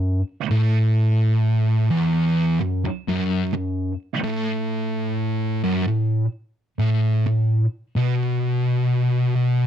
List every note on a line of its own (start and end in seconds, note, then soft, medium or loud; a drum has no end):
0.00 0.19 F#2 medium
0.51 1.89 A2 loud
1.91 2.59 E2 loud
2.61 2.83 F#2 medium
2.84 muted distorted electric guitar stroke medium
3.08 3.52 F#2 loud
3.53 3.91 F#2 medium
4.24 5.62 A2 loud
5.64 5.85 F#2 loud
5.87 6.24 A2 medium
6.79 7.24 A2 loud
7.26 7.63 A2 medium
7.96 9.34 B2 loud
9.35 9.67 B2 loud